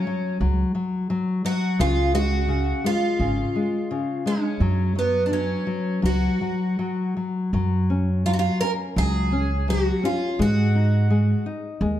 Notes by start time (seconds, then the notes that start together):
Already playing: C#4
0.07 F#3
0.40 C#2 F#3
0.75 F#3
1.10 F#3
1.45 F#3 F#4
1.79 C#2 C#3 F4
2.14 G#3 F#4
2.48 C#3
2.84 G#3 F4
3.19 G#1 C#3
3.56 G#3
3.91 C#3
4.26 G#3 C#4
4.60 F#2 F#3
4.96 F#3 B3
5.26 D4
5.32 F#3 C#4
5.67 F#3
6.02 C#2 F#3 F#4
6.41 F#3
6.79 F#3
7.17 F#3
7.53 F#2 F#3
7.90 C#4
8.26 F#3 F4
8.33 F#4
8.39 F4
8.61 C#4 A#4
8.96 C#2 F#3 G#4
9.32 C#4
9.68 F#3 F#4
10.03 C#4 F4
10.39 G#2 G#3 F#4
10.75 D#4
11.10 G#3
11.46 D#4
11.81 D#2 G#3